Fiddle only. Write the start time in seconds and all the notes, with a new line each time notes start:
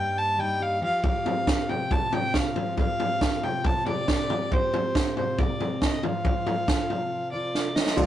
Already playing: G5
0.18 A5
0.40 G5
0.62 F5
0.84 F5
1.05 F5
1.70 G5
1.92 A5
2.14 G5
2.36 F5
2.79 F5
3.44 G5
3.66 A5
3.87 D5
4.53 C5
5.18 C5
5.39 D5
5.83 D#5
6.04 F5
7.32 D5
7.75 D#5
7.97 F5